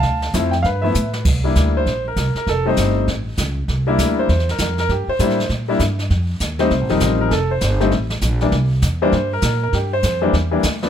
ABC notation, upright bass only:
X:1
M:4/4
L:1/8
Q:"Swing" 1/4=198
K:Cmix
V:1 name="Upright bass" clef=bass
D,,2 F,,2 G,,2 A,,2 | C,,2 D,,2 B,,,2 C,, z | F,,,2 G,,,2 A,,,2 _D,,2 | C,,2 D,,2 E,,2 F,,2 |
G,, z A,,2 B,,2 G,,2 | F,,2 _E,,2 (3C,, A,,, F,,, A,,,2 | F,,,2 G,,,2 A,,,2 B,,,2 | C,,2 E,,2 G,,2 B,,2 |
G,,2 F,,2 E,,2 D,,2 |]